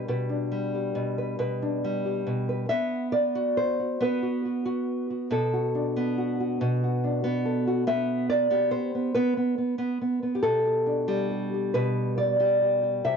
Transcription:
0.00 0.50 G3 soft
0.00 0.29 D4 soft
0.08 0.94 B2 medium
0.08 1.17 B4 medium
0.29 1.61 D4 soft
0.51 1.83 G3 soft
0.74 2.04 G4 soft
0.95 1.38 B2 medium
1.18 1.39 B4 soft
1.39 2.26 B2 medium
1.39 2.48 B4 medium
1.62 2.66 D4 soft
1.84 2.70 G3 soft
2.06 2.65 G4 soft
2.27 2.65 B2 soft
2.49 2.65 B4 soft
2.69 4.00 B3 medium
2.69 3.12 E5 loud
3.12 3.57 D5 medium
3.35 3.79 F#4 medium
3.57 4.01 C5 medium
3.80 4.22 F#4 soft
4.01 5.35 B3 medium
4.01 5.53 B4 medium
4.23 4.44 F#4 soft
4.45 4.64 F#4 soft
4.65 5.09 F#4 soft
5.10 5.26 F#4 soft
5.30 6.60 B2 medium
5.30 7.44 A4 medium
5.53 6.17 F#4 soft
5.75 7.03 D4 soft
5.96 7.23 B3 medium
6.18 6.39 F#4 soft
6.40 6.82 F#4 soft
6.61 8.74 B2 medium
6.83 7.23 F#4 soft
7.04 7.90 D4 soft
7.24 7.87 B3 medium
7.24 7.66 F#4 soft
7.45 7.87 A4 soft
7.67 7.83 F#4 soft
7.87 8.50 B3 medium
7.87 8.29 E5 medium
8.30 8.71 D5 loud
8.51 8.94 B3 medium
8.51 9.14 G4 soft
8.71 9.15 C5 medium
8.95 9.15 B3 soft
9.14 9.36 B3 medium
9.14 10.34 B4 medium
9.37 9.57 B3 soft
9.58 9.77 B3 soft
9.78 10.00 B3 medium
10.01 10.21 B3 soft
10.23 10.39 B3 soft
10.35 10.64 G4 medium
10.42 11.73 B2 medium
10.42 11.73 A4 medium
10.65 11.08 G4 soft
10.86 13.00 D4 soft
11.08 12.39 G3 medium
11.08 11.31 G4 soft
11.31 11.54 G4 soft
11.54 12.40 G4 soft
11.74 13.00 B2 medium
11.74 12.17 B4 medium
12.18 13.04 D5 medium
12.40 13.17 G3 medium
12.40 12.62 G4 soft
12.62 12.83 G4 soft
12.83 13.17 G4 soft
13.05 13.17 C3 medium
13.05 13.17 E5 medium

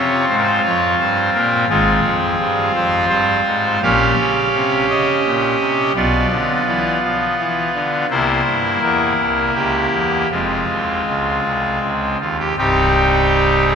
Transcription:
0.00 0.25 C3 medium
0.00 1.66 C4 medium
0.00 1.66 F4 medium
0.00 0.25 C#5 loud
0.30 0.60 G#2 medium
0.30 0.36 C5 loud
0.37 0.43 A#4 medium
0.43 0.62 C5 loud
0.65 0.95 F2 medium
0.65 0.95 C#5 loud
1.00 1.30 G2 medium
1.00 1.30 C5 medium
1.34 1.64 A#2 medium
1.34 1.64 A#4 medium
1.69 2.00 G#1 medium
1.69 2.00 G#2 medium
1.69 3.79 C4 medium
1.69 3.79 F4 medium
1.69 2.72 G#4 loud
2.04 2.34 F2 medium
2.39 2.69 G2 medium
2.75 3.05 F2 medium
2.75 3.05 C5 loud
3.09 3.41 G2 medium
3.09 3.81 C5 loud
3.46 3.78 G#2 medium
3.83 4.13 A#1 medium
3.83 4.14 A#2 medium
3.83 5.92 C#4 medium
3.83 5.92 G4 medium
3.83 4.86 F5 loud
4.19 4.49 C#3 medium
4.54 4.84 C3 medium
4.90 5.20 C#3 medium
4.90 5.93 D#5 loud
5.25 5.55 A#2 medium
5.60 5.91 C3 medium
5.95 6.26 B1 medium
5.95 6.26 B2 medium
5.95 8.06 B3 soft
5.95 8.06 F4 soft
5.95 6.65 D5 loud
6.31 6.62 D3 medium
6.67 6.98 E3 medium
6.67 6.98 D5 medium
7.03 7.34 F3 medium
7.39 7.69 E3 medium
7.75 8.05 D3 medium
8.10 8.41 C2 medium
8.10 8.41 C3 medium
8.10 10.27 A#3 soft
8.10 10.26 E4 medium
8.10 8.80 C5 loud
8.46 8.77 G2 medium
8.82 9.13 E2 medium
8.82 9.53 A#4 medium
9.18 9.49 C2 medium
9.55 9.87 C#2 medium
9.55 10.28 G4 medium
9.92 10.25 E2 medium
10.31 10.63 F1 medium
10.31 10.63 F2 medium
10.31 12.17 G#3 soft
10.31 12.17 C4 soft
10.31 11.79 F4 medium
10.70 11.02 D#2 soft
11.07 11.39 C#2 medium
11.45 11.78 C2 medium
11.83 12.15 C#2 soft
12.21 12.53 D#2 medium
12.21 12.37 F4 medium
12.40 12.55 G4 medium
12.58 13.75 C1 medium
12.58 13.75 C2 medium
12.58 13.75 G3 soft
12.58 13.75 C4 soft
12.58 13.75 D#4 soft
12.58 13.65 G4 medium
13.67 13.75 G#4 medium

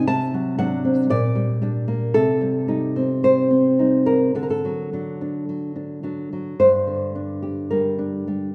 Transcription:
0.07 1.07 C3 medium
0.07 0.57 A5 loud
0.34 0.57 F#3 medium
0.59 1.07 F#3 medium
0.59 1.07 D4 medium
0.59 1.08 F#5 loud
0.85 1.11 C4 medium
1.10 2.13 A#2 medium
1.10 2.12 D5 medium
1.35 1.60 G3 medium
1.62 2.12 G3 medium
1.62 2.13 D4 medium
1.88 2.16 A#3 medium
2.14 4.31 C3 medium
2.14 3.18 A4 medium
2.41 2.67 G3 soft
2.68 3.22 G3 medium
2.68 3.78 D#4 medium
2.96 3.49 C4 medium
3.23 3.78 G3 soft
3.23 4.04 C5 medium
3.51 4.36 C4 soft
3.79 4.05 G3 soft
3.79 4.32 D#4 soft
4.06 4.36 G3 soft
4.06 4.35 A#4 medium
4.35 6.54 D3 medium
4.35 4.42 A4 medium
4.43 4.50 A#4 medium
4.50 5.44 A4 medium
4.65 4.92 F#3 soft
4.93 5.48 F#3 soft
4.93 5.20 D4 soft
5.21 5.74 D4 soft
5.49 6.02 F#3 soft
5.76 6.03 D4 soft
6.03 6.32 F#3 soft
6.03 6.55 D4 soft
6.33 6.59 F#3 soft
6.59 8.55 G2 medium
6.59 7.67 C5 medium
6.87 8.54 D3 soft
7.15 7.97 D4 soft
7.42 8.55 G4 soft
7.70 8.26 G3 soft
7.70 8.55 A#4 medium
7.99 8.53 D4 soft
8.28 8.55 G3 soft

